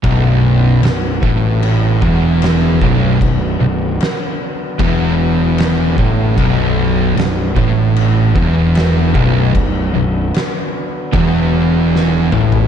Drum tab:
CC |x---x---x---x---|x---x---x---x---|x---x---x---x---|x---x---x-------|
SD |----o-------o---|----o-------o---|----o-------o---|----o-------o---|
T2 |----------------|----------------|----------------|--------------o-|
FT |----------------|----------------|----------------|---------------o|
BD |o-----o---o---o-|o-------o-----o-|o-----o---o---o-|o-------o-------|